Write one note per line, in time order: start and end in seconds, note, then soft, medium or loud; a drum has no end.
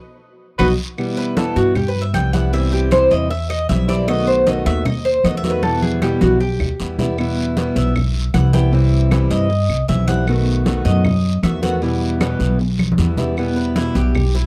0.58 0.74 B1 loud
0.58 0.72 F#3 medium
0.58 0.72 B3 medium
0.58 0.72 D#4 medium
0.58 0.71 F#4 medium
0.58 0.68 B4 medium
0.58 0.71 B4 medium
0.58 0.71 D#5 medium
0.58 high conga medium
0.58 long guiro medium
0.58 claves medium
0.98 1.36 B2 medium
0.98 1.36 E3 medium
0.98 1.36 G3 medium
0.98 1.37 B3 medium
0.98 1.37 E4 medium
0.98 high conga soft
0.98 long guiro medium
0.98 claves medium
1.17 1.36 B4 medium
1.17 high conga soft
1.37 1.75 B2 medium
1.37 1.75 E3 medium
1.37 1.75 G3 medium
1.37 1.76 B3 medium
1.37 1.76 E4 medium
1.37 1.56 A4 medium
1.37 high conga loud
1.37 short guiro medium
1.56 2.10 G2 medium
1.56 1.75 F#4 medium
1.56 high conga soft
1.56 short guiro medium
1.75 1.88 G4 medium
1.75 muted steel-string acoustic guitar stroke medium
1.75 high conga soft
1.75 low conga medium
1.75 long guiro medium
1.75 claves medium
1.88 2.01 B4 medium
1.96 high conga soft
2.02 2.14 E5 medium
2.14 3.05 C2 medium
2.14 2.33 E3 soft
2.14 2.33 G3 soft
2.14 2.33 B3 soft
2.14 2.33 E4 soft
2.14 2.33 G5 medium
2.14 high conga medium
2.14 short guiro medium
2.14 claves medium
2.33 2.52 E3 medium
2.33 2.53 G3 medium
2.33 2.53 B3 medium
2.33 2.52 E4 medium
2.33 2.52 F#5 medium
2.33 high conga medium
2.33 short guiro medium
2.53 2.90 C3 medium
2.53 2.91 E3 medium
2.53 2.91 G3 medium
2.53 2.91 C4 medium
2.53 2.92 E4 medium
2.53 2.72 E5 medium
2.53 long guiro medium
2.72 2.91 G4 medium
2.72 high conga soft
2.91 3.29 C3 medium
2.91 3.29 E3 medium
2.91 3.30 G3 medium
2.91 3.30 C4 medium
2.91 3.30 E4 medium
2.91 3.11 C5 medium
2.91 high conga loud
2.91 short guiro medium
2.91 claves medium
3.11 3.65 E2 loud
3.11 3.30 D#5 medium
3.11 short guiro medium
3.30 3.49 E5 medium
3.30 muted steel-string acoustic guitar stroke medium
3.30 high conga soft
3.30 long guiro medium
3.50 3.69 D#5 medium
3.50 high conga soft
3.50 claves medium
3.69 4.60 B1 medium
3.69 3.88 E3 soft
3.69 3.88 G3 soft
3.69 3.87 C4 soft
3.69 3.87 E4 medium
3.69 3.88 E5 medium
3.69 high conga medium
3.69 short guiro medium
3.88 4.08 E3 medium
3.88 4.08 G3 medium
3.88 4.07 C4 medium
3.88 4.07 E4 medium
3.88 4.08 D5 medium
3.88 short guiro medium
4.08 4.45 B2 medium
4.08 4.46 D#3 medium
4.08 4.46 A3 medium
4.08 4.47 B3 medium
4.08 4.47 F#4 medium
4.08 4.27 D#5 loud
4.08 high conga soft
4.08 long guiro medium
4.08 claves medium
4.27 4.46 C5 medium
4.27 high conga soft
4.46 4.84 B2 medium
4.46 4.84 D#3 medium
4.46 4.85 A3 medium
4.46 4.85 B3 medium
4.46 4.85 F#4 medium
4.46 4.66 D#5 medium
4.46 high conga medium
4.46 short guiro medium
4.66 5.20 D#2 loud
4.66 4.85 E5 loud
4.66 high conga soft
4.66 short guiro medium
4.85 5.04 D#5 medium
4.85 muted steel-string acoustic guitar stroke medium
4.85 high conga soft
4.85 low conga medium
4.85 long guiro medium
4.85 claves medium
5.05 5.24 C5 medium
5.05 high conga soft
5.24 6.15 E2 loud
5.24 5.43 D#3 soft
5.24 5.43 A3 soft
5.24 5.44 B3 medium
5.24 5.43 F#4 soft
5.24 5.37 D#5 medium
5.24 high conga medium
5.24 short guiro medium
5.24 claves medium
5.37 5.50 E5 loud
5.43 5.63 D#3 medium
5.43 5.63 A3 medium
5.43 5.63 B3 medium
5.43 5.63 F#4 medium
5.43 high conga medium
5.43 short guiro medium
5.50 5.63 B4 medium
5.63 6.01 B2 medium
5.63 6.01 E3 medium
5.63 6.02 G3 medium
5.63 6.02 B3 medium
5.63 6.02 E4 medium
5.63 5.82 A4 medium
5.63 high conga medium
5.63 long guiro medium
5.82 6.01 G#4 medium
5.82 high conga medium
6.02 6.40 B2 medium
6.02 6.40 E3 medium
6.02 6.40 G3 medium
6.02 6.40 B3 medium
6.02 6.41 E4 medium
6.02 6.21 G4 medium
6.02 high conga medium
6.02 short guiro medium
6.02 claves medium
6.21 6.57 B1 medium
6.21 6.40 F#4 medium
6.21 high conga loud
6.21 short guiro medium
6.40 7.14 G4 medium
6.40 muted steel-string acoustic guitar stroke medium
6.40 long guiro medium
6.60 6.78 D#2 medium
6.60 low conga medium
6.60 claves medium
6.79 7.71 E2 medium
6.79 6.98 E3 soft
6.79 6.98 G3 soft
6.79 6.98 B3 soft
6.79 6.98 E4 soft
6.79 short guiro medium
6.99 7.17 E3 medium
6.99 7.18 G3 medium
6.99 7.18 B3 medium
6.99 7.17 E4 medium
6.99 low conga medium
6.99 short guiro medium
7.18 7.55 B2 medium
7.18 7.56 E3 medium
7.18 7.57 G3 medium
7.18 7.57 B3 medium
7.18 7.57 E4 medium
7.18 high conga soft
7.18 long guiro medium
7.18 claves medium
7.37 high conga soft
7.57 7.94 B2 medium
7.57 7.95 E3 medium
7.57 7.95 G3 medium
7.57 7.95 B3 medium
7.57 7.95 E4 medium
7.57 high conga medium
7.57 short guiro medium
7.76 8.30 B1 medium
7.76 8.30 E5 medium
7.76 high conga soft
7.76 short guiro medium
7.95 muted steel-string acoustic guitar stroke medium
7.95 high conga soft
7.95 low conga medium
7.95 long guiro medium
7.95 claves medium
8.15 high conga soft
8.34 9.25 C2 loud
8.34 8.53 E3 soft
8.34 8.53 G3 soft
8.34 8.53 B3 soft
8.34 8.52 E4 soft
8.34 8.53 F#5 medium
8.34 high conga medium
8.34 short guiro medium
8.34 claves medium
8.53 8.71 E3 medium
8.53 8.72 G3 medium
8.53 8.72 B3 medium
8.53 8.72 E4 medium
8.53 8.72 G5 loud
8.53 high conga medium
8.53 short guiro medium
8.72 9.10 C3 medium
8.72 9.11 E3 medium
8.72 9.11 G3 medium
8.72 9.11 C4 medium
8.72 9.11 E4 medium
8.72 long guiro medium
8.92 high conga soft
9.11 9.49 C3 medium
9.11 9.49 E3 medium
9.11 9.50 G3 medium
9.11 9.50 C4 medium
9.11 9.50 E4 medium
9.11 high conga loud
9.11 short guiro medium
9.11 claves medium
9.30 9.66 G2 loud
9.30 9.85 D#5 medium
9.30 short guiro medium
9.50 muted steel-string acoustic guitar stroke medium
9.50 high conga soft
9.50 long guiro medium
9.69 9.87 C2 medium
9.69 high conga soft
9.69 claves medium
9.88 10.80 B1 loud
9.88 10.07 E3 soft
9.88 10.08 G3 soft
9.88 10.08 C4 medium
9.88 10.07 E4 medium
9.88 10.07 E5 medium
9.88 high conga medium
9.88 short guiro medium
10.08 10.27 E3 medium
10.08 10.27 G3 medium
10.08 10.27 C4 medium
10.08 10.27 E4 medium
10.08 10.27 F#5 loud
10.08 high conga medium
10.08 short guiro medium
10.27 10.65 B2 medium
10.27 10.66 D#3 medium
10.27 10.66 A3 medium
10.27 10.66 B3 medium
10.27 10.66 F#4 medium
10.27 high conga soft
10.27 long guiro medium
10.27 claves medium
10.47 high conga soft
10.66 11.04 B2 medium
10.66 11.04 D#3 medium
10.66 11.05 A3 medium
10.66 11.04 B3 medium
10.66 11.05 F#4 medium
10.66 high conga medium
10.66 short guiro medium
10.85 11.39 F#2 loud
10.85 11.39 D#5 medium
10.85 high conga soft
10.85 short guiro medium
11.05 muted steel-string acoustic guitar stroke medium
11.05 high conga soft
11.05 low conga medium
11.05 long guiro medium
11.05 claves medium
11.24 high conga soft
11.43 12.34 E2 loud
11.43 11.62 D#3 soft
11.43 11.62 A3 soft
11.43 11.62 B3 soft
11.43 11.61 F#4 medium
11.43 11.62 E5 medium
11.43 high conga medium
11.43 short guiro medium
11.43 claves medium
11.62 11.82 D#3 medium
11.62 11.82 A3 medium
11.62 11.82 B3 medium
11.62 11.81 F#4 medium
11.62 11.74 F#5 loud
11.62 high conga medium
11.62 short guiro medium
11.81 12.19 B2 medium
11.81 12.19 E3 medium
11.81 12.20 G3 medium
11.81 12.21 B3 medium
11.81 12.21 E4 medium
11.81 long guiro medium
12.02 high conga soft
12.20 12.59 B2 medium
12.20 12.59 E3 medium
12.20 12.59 G3 medium
12.20 12.59 B3 medium
12.20 12.59 E4 medium
12.20 high conga loud
12.20 short guiro medium
12.20 claves medium
12.39 12.94 B1 medium
12.39 short guiro medium
12.59 muted steel-string acoustic guitar stroke medium
12.59 high conga soft
12.59 long guiro medium
12.79 high conga medium
12.79 claves medium
12.92 high conga loud
12.98 13.89 E2 loud
12.98 13.17 E3 soft
12.98 13.18 G3 medium
12.98 13.17 B3 soft
12.98 13.16 E4 soft
12.98 short guiro medium
13.17 13.37 E3 medium
13.17 13.37 G3 medium
13.17 13.37 B3 medium
13.17 13.36 E4 medium
13.17 low conga medium
13.17 short guiro medium
13.37 13.75 B2 medium
13.37 13.76 E3 medium
13.37 13.76 G3 medium
13.37 13.76 B3 medium
13.37 13.76 E4 medium
13.37 high conga soft
13.37 long guiro medium
13.37 claves medium
13.56 13.75 B4 medium
13.56 high conga soft
13.76 14.14 B2 medium
13.76 14.15 E3 medium
13.76 14.15 G3 medium
13.76 14.15 B3 medium
13.76 13.95 E4 medium
13.76 14.15 E4 medium
13.76 high conga medium
13.76 short guiro medium
13.95 14.46 B1 loud
13.95 14.33 G4 medium
13.95 high conga soft
13.95 short guiro medium
14.15 muted steel-string acoustic guitar stroke medium
14.15 high conga soft
14.15 low conga medium
14.15 long guiro medium
14.15 claves medium
14.35 14.46 E4 medium
14.35 high conga soft